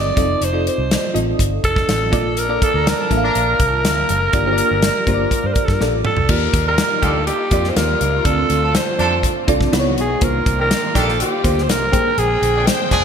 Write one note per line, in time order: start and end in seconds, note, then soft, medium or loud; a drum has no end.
0.00 0.16 C4 medium
0.00 0.16 D#4 medium
0.00 0.18 G4 medium
0.00 0.19 A#4 medium
0.00 0.46 D5 medium
0.16 0.35 F1 medium
0.16 0.50 C4 medium
0.16 0.50 D#4 medium
0.16 0.50 F4 medium
0.16 0.51 A4 medium
0.16 0.51 D#5 medium
0.16 kick loud
0.16 closed hi-hat medium
0.41 0.68 F1 medium
0.41 0.67 C5 medium
0.41 closed hi-hat medium
0.52 1.09 C4 medium
0.52 1.09 D#4 medium
0.52 1.09 F4 medium
0.52 1.10 A4 medium
0.52 1.10 D5 medium
0.67 1.13 C5 medium
0.67 closed hi-hat medium
0.78 0.96 C2 medium
0.91 snare medium
0.91 closed hi-hat medium
1.14 1.33 A1 medium
1.14 2.04 C4 medium
1.14 2.04 D#4 medium
1.14 2.05 F4 medium
1.14 2.05 A4 medium
1.14 2.05 D#5 medium
1.14 closed hi-hat medium
1.39 1.57 G1 medium
1.39 kick medium
1.39 closed hi-hat medium
1.64 1.82 F1 medium
1.64 2.40 A4 loud
1.64 kick medium
1.64 closed hi-hat medium
1.76 kick medium
1.76 snare soft
1.88 2.13 A1 medium
1.88 snare medium
1.88 closed hi-hat medium
2.11 2.57 A#1 medium
2.11 2.46 A#3 medium
2.11 2.46 D4 medium
2.11 2.46 F4 medium
2.11 2.46 A4 medium
2.11 2.46 D5 medium
2.11 kick medium
2.11 closed hi-hat medium
2.37 2.65 A#4 loud
2.37 closed hi-hat medium
2.49 3.05 A#3 medium
2.49 3.06 D4 medium
2.49 3.06 F4 medium
2.49 3.06 A4 medium
2.49 3.06 D5 medium
2.62 2.71 F3 medium
2.62 2.72 D4 medium
2.62 2.72 A4 medium
2.62 2.90 A4 loud
2.62 kick loud
2.62 closed hi-hat medium
2.74 2.92 D2 medium
2.74 2.85 F3 medium
2.74 2.85 D4 medium
2.74 2.84 A#4 medium
2.87 2.97 F3 medium
2.87 2.97 D4 medium
2.87 2.97 A#4 medium
2.87 5.48 A#4 loud
2.87 snare loud
2.87 closed hi-hat medium
3.00 3.09 F3 medium
3.00 3.09 D4 medium
3.00 3.09 A4 medium
3.10 3.28 A1 medium
3.10 4.01 A#3 medium
3.10 4.01 D4 medium
3.10 4.01 F4 medium
3.10 3.17 E5 medium
3.10 4.01 A5 medium
3.10 kick medium
3.10 closed hi-hat medium
3.17 4.04 F5 medium
3.24 3.58 F3 medium
3.24 3.58 D4 loud
3.24 3.58 A#4 loud
3.35 3.53 A#1 medium
3.35 closed hi-hat medium
3.60 3.86 C2 medium
3.60 kick medium
3.60 closed hi-hat medium
3.85 4.03 D2 medium
3.85 snare loud
3.85 closed hi-hat medium
4.09 4.27 F#1 medium
4.09 closed hi-hat medium
4.33 4.60 G1 loud
4.33 4.44 A#3 medium
4.33 4.45 D4 medium
4.33 4.45 F4 medium
4.33 4.45 G4 medium
4.33 4.45 D5 medium
4.33 kick loud
4.33 closed hi-hat medium
4.46 5.02 A#3 medium
4.46 5.02 D4 medium
4.46 5.02 F4 medium
4.46 5.02 G4 medium
4.46 4.52 C5 medium
4.53 5.05 D5 medium
4.58 closed hi-hat medium
4.71 4.88 G1 medium
4.82 snare loud
4.82 closed hi-hat medium
5.07 5.25 G1 medium
5.07 5.79 A#3 medium
5.07 5.79 D4 medium
5.07 5.79 F4 medium
5.07 5.81 G4 medium
5.07 5.13 C5 medium
5.07 kick medium
5.07 closed hi-hat medium
5.14 5.80 D5 medium
5.31 kick medium
5.31 closed hi-hat medium
5.44 5.53 G2 medium
5.44 5.55 C5 medium
5.53 5.66 A#4 medium
5.53 kick medium
5.53 closed hi-hat medium
5.65 5.77 G2 medium
5.65 5.75 A4 medium
5.65 kick medium
5.65 snare soft
5.74 5.82 A#4 medium
5.80 5.93 A#1 medium
5.80 6.25 A#3 medium
5.80 6.26 D4 medium
5.80 6.26 F4 medium
5.80 6.26 A4 medium
5.80 6.26 D5 medium
5.80 snare medium
5.93 6.02 A1 medium
6.05 6.32 A4 medium
6.05 mid tom medium
6.17 6.26 C2 medium
6.17 floor tom medium
6.28 6.47 D#2 loud
6.28 8.24 G3 medium
6.28 7.19 A#3 medium
6.28 7.19 D#4 medium
6.28 8.24 D#4 medium
6.28 7.20 F4 medium
6.28 9.70 F4 medium
6.28 7.20 G4 medium
6.28 6.67 A#4 medium
6.28 7.20 D5 medium
6.28 8.24 D5 medium
6.28 kick loud
6.28 crash medium
6.54 6.80 D#2 medium
6.54 kick loud
6.54 closed hi-hat medium
6.66 6.77 G3 medium
6.66 6.77 F4 medium
6.66 6.77 A#4 medium
6.66 7.05 A#4 medium
6.78 snare loud
6.78 closed hi-hat medium
7.02 7.29 D2 medium
7.02 7.18 D3 medium
7.02 7.18 A#3 medium
7.02 7.18 G4 medium
7.02 7.26 A4 medium
7.02 kick medium
7.02 closed hi-hat medium
7.27 7.72 G4 medium
7.27 closed hi-hat medium
7.51 7.69 F2 medium
7.51 8.19 A#3 medium
7.51 8.20 D#4 medium
7.51 8.20 F4 medium
7.51 8.20 G4 medium
7.51 8.20 D5 medium
7.51 kick medium
7.51 closed hi-hat medium
7.64 snare soft
7.70 7.78 C5 medium
7.76 7.94 D#2 medium
7.76 8.27 A#4 medium
7.76 snare loud
7.76 closed hi-hat medium
8.01 8.19 C#2 medium
8.01 closed hi-hat medium
8.25 8.43 D2 loud
8.25 9.71 D3 medium
8.25 9.71 A3 medium
8.25 9.15 C4 medium
8.25 9.71 C4 medium
8.25 9.15 D4 medium
8.25 8.31 D#4 soft
8.25 8.77 A4 loud
8.25 9.16 A4 medium
8.25 9.16 D5 medium
8.25 kick loud
8.25 closed hi-hat medium
8.31 9.18 F4 medium
8.50 8.76 D2 medium
8.50 closed hi-hat medium
8.63 8.73 F3 medium
8.63 8.73 D4 medium
8.63 8.73 A4 medium
8.75 9.24 C5 medium
8.75 snare loud
8.75 closed hi-hat medium
8.98 9.25 F2 medium
8.98 9.14 F3 medium
8.98 9.14 D4 medium
8.98 9.14 A4 loud
8.98 closed hi-hat medium
9.23 kick medium
9.23 closed hi-hat medium
9.47 9.66 C2 medium
9.47 9.72 C4 medium
9.47 9.72 D4 medium
9.47 9.73 F4 medium
9.47 9.73 A4 medium
9.47 9.73 D5 loud
9.47 kick medium
9.47 closed hi-hat medium
9.61 kick medium
9.61 snare soft
9.72 9.97 C#2 medium
9.72 10.21 E3 medium
9.72 10.18 B3 medium
9.72 10.21 B3 medium
9.72 10.18 D#4 medium
9.72 10.18 E4 medium
9.72 10.21 F#4 medium
9.72 10.18 F#4 medium
9.72 9.79 B4 medium
9.72 10.21 D#5 medium
9.72 snare loud
9.72 closed hi-hat medium
9.79 10.21 C#5 medium
9.97 10.15 B1 medium
9.97 10.25 G#4 medium
9.97 closed hi-hat medium
10.21 10.39 C2 loud
10.21 11.92 D#3 medium
10.21 11.12 A#3 medium
10.21 11.92 A#3 medium
10.21 11.12 D4 medium
10.21 11.12 D#4 medium
10.21 11.12 F4 medium
10.21 11.92 F4 medium
10.21 10.60 A#4 medium
10.21 11.12 C5 medium
10.21 11.92 D5 medium
10.21 kick loud
10.21 closed hi-hat medium
10.46 10.73 C2 loud
10.46 kick medium
10.46 closed hi-hat medium
10.59 10.69 D#3 medium
10.59 10.69 D4 medium
10.59 10.69 G4 medium
10.59 10.99 A#4 medium
10.71 snare loud
10.71 closed hi-hat medium
10.95 11.22 A#1 medium
10.95 11.11 D#3 medium
10.95 11.11 D4 loud
10.95 11.11 G4 loud
10.95 11.21 A4 medium
10.95 kick medium
10.95 closed hi-hat medium
11.09 snare soft
11.20 11.64 G4 medium
11.20 closed hi-hat medium
11.44 11.68 D2 medium
11.44 11.91 A#3 medium
11.44 11.91 D4 medium
11.44 11.93 D#4 medium
11.44 11.93 F4 medium
11.44 11.92 C5 medium
11.44 kick medium
11.44 closed hi-hat medium
11.58 snare soft
11.63 11.71 C5 medium
11.68 11.94 C2 medium
11.68 12.20 A#4 loud
11.68 snare medium
11.68 closed hi-hat medium
11.92 12.11 A#1 loud
11.92 13.04 D3 medium
11.92 13.04 G#3 medium
11.92 12.83 A#3 medium
11.92 13.04 C4 medium
11.92 12.83 D4 medium
11.92 12.83 G#4 medium
11.92 12.83 C5 medium
11.92 12.83 G5 medium
11.92 13.04 G5 medium
11.92 kick medium
11.92 closed hi-hat medium
12.18 12.35 A#1 medium
12.18 12.68 G#4 medium
12.18 closed hi-hat medium
12.42 12.69 A#1 loud
12.42 closed hi-hat medium
12.55 12.66 F3 medium
12.55 12.66 D4 medium
12.55 12.66 G#4 medium
12.67 13.04 C5 medium
12.67 snare loud
12.67 closed hi-hat medium
12.91 13.04 F1 medium
12.91 13.04 F3 loud
12.91 13.04 D4 medium
12.91 13.04 G#4 loud
12.91 kick medium
12.91 closed hi-hat medium